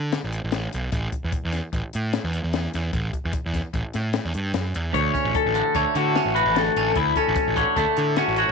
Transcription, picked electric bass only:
Already playing: D3
0.24 A1
0.44 A1
0.74 B1
0.92 A1
1.24 E2
1.45 E2
1.73 A1
1.95 A2
2.24 E2
2.44 E2
2.74 E2
2.94 A1
3.25 E2
3.46 E2
3.74 A1
3.95 A2
4.25 E2
4.35 G2
4.54 F#2
4.75 E2
4.95 D2
5.25 A1
5.46 A1
5.75 D2
5.95 D3
6.25 A1
6.45 A1
6.76 A1
6.96 D2
7.28 A1
7.47 A1
7.77 D2
7.98 D3
8.28 A1
8.48 A1

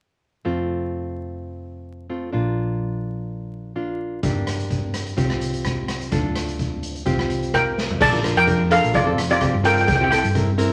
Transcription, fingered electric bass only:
0.45 F1
2.34 A#1
4.23 G1
5.18 C2
6.12 D2
7.07 C2
8.01 A#1
8.36 F2
8.84 A#1
8.94 F1
9.18 F1
9.54 G2
9.88 C2
10.24 G2

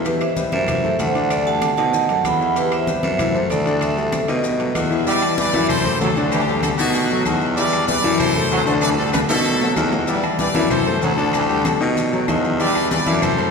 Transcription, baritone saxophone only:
Already playing: E2
0.52 F#2
0.99 D2
1.78 B2
2.10 F#2
2.25 E2
3.04 F#2
3.50 D2
4.29 B2
4.75 E2
5.53 F#2
6.01 D2
6.79 B2
7.26 E2
8.04 F#2
8.50 D2
9.29 B2
9.77 E2
10.54 F#2
11.02 D2
11.81 B2
12.28 E2
13.07 F#2

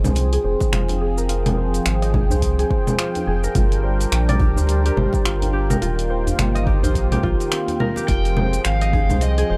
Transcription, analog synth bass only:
0.04 C2
0.44 F1
0.73 F1
1.86 G#1
2.31 C2
3.27 F1
3.55 G1
4.12 A#1
4.57 D2
4.97 G1
5.25 G1
5.82 D#1
6.39 G1
6.84 A#1
7.24 A#1
8.09 F1
8.65 G#1
9.10 C2
9.50 F1

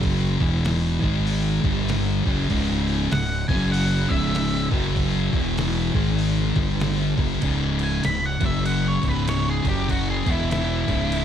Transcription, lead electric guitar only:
3.12 F#5
3.48 G#5
3.72 F#5
4.09 E5
7.83 G#5
8.05 B5
8.26 F#5
8.46 E5
8.66 F#5
8.88 C#5
9.09 B4
9.29 C#5
9.50 G#4
9.69 G4
9.91 F#4
10.10 G#4
10.29 E4
10.51 E4

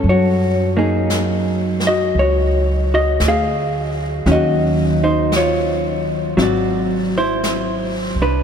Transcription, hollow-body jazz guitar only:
0.09 F#4 C#5
0.77 F#3 A#3 D#4 G#4
1.87 F#4 D#5
2.19 F#4 C#5
2.94 F#4 D#5
3.28 G#4 F5
4.26 D#3 F#3 C#4
4.32 F#4 D#5
5.04 D#4 C5
5.36 F4 C#5
6.37 F#3 C4 E4
6.42 F#4 D5
7.18 E4 C5
8.22 D4 B4

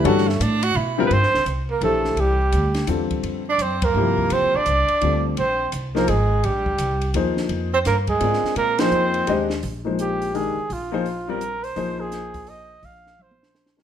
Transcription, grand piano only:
Already playing: E3 A3 D4 G4 B4
0.04 D3 G3 C#4 F#4 A4
0.98 D3 G3 C4 F4 A#4
1.82 E3 D4 G4 A4 C5
2.87 D3 G3 C4 F4 A4
3.96 C3 F3 A#3 E4 G4
5.01 D3 G3 C4 F4 A4
5.95 F3 A#3 D#4 G#4 C5
7.15 F3 A#3 D#4 G#4 C5
8.21 G#3 C4 F4 A#4 D5
8.79 F3 A#3 D#4 G#4 C5
9.28 G#3 D4 G4 C5 D#5
9.85 F3 G#3 A#3 D#4 C5
10.34 D#3 G#3 D4 G4 A#4
10.92 F3 A#3 D#4 G#4 C5
11.28 G3 C4 F4 A#4 D5
11.76 F3 A#3 D#4 G#4 C5
13.77 D#3 G#3 D4 G4 A#4

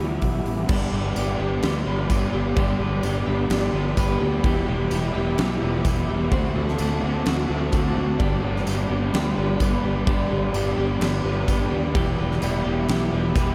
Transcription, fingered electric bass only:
0.00 D2
0.23 B1
0.45 A1
0.69 G1
0.92 G1
1.16 G1
1.40 G1
1.63 D2
1.87 G1
2.10 G1
2.33 G1
2.57 G1
2.80 G1
3.04 G1
3.27 G1
3.50 G1
3.73 G1
3.97 G1
4.21 D2
4.44 E1
4.68 E1
4.92 E1
5.15 E1
5.38 B1
5.62 E1
5.85 E1
6.09 E1
6.32 D2
6.56 D2
6.80 D2
7.03 D2
7.27 D2
7.49 D2
7.73 D2
7.97 D2
8.20 G1
8.44 G1
8.67 G1
8.90 G1
9.14 D2
9.38 G1
9.61 G1
9.85 G1
10.07 G1
10.31 G1
10.54 G1
10.78 G1
11.01 G1
11.24 G1
11.48 G1
11.72 D#2
11.95 E1
12.19 E1
12.42 E1
12.66 E1
12.89 B1
13.13 E1
13.35 E1

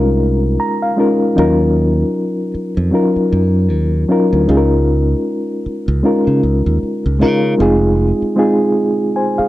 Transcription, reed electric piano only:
Already playing: G#3 C#4 D#4 F4 A#4
0.60 A#5
0.82 F5
0.97 G#3 C#4 D#4 F4 A#4
1.36 F#3 C#4 D#4 F4 A#4
2.92 F#3 C#4 D#4 F4 A#4
4.08 F#3 C#4 D#4 F4 A#4
4.47 G#3 C#4 D#4 F4 G#4
4.57 A#4
6.03 G#3 C#4 D#4 F4 A#4
7.19 G#3 C#4 D#4 F4 A#4
7.58 G#3 C4 D#4 F4 G#4
8.36 G#3 C4 D#4 F4 G#4
9.16 C5 G#5
9.38 G#4 F5

